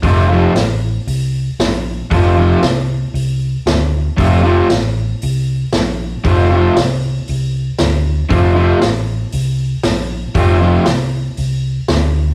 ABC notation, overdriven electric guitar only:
X:1
M:4/4
L:1/8
Q:1/4=116
K:F
V:1 name="Overdriven electric guitar" clef=bass
[F,,C,F,A,CF] [F,,C,F,A,CF] z6 | [F,,C,F,A,CF] [F,,C,F,A,CF] z6 | [F,,C,F,A,CF] [F,,C,F,A,CF] z6 | [F,,C,F,A,CF] [F,,C,F,A,CF] z6 |
[F,,C,F,A,CF] [F,,C,F,A,CF] z6 | [F,,C,F,A,CF] [F,,C,F,A,CF] z6 |]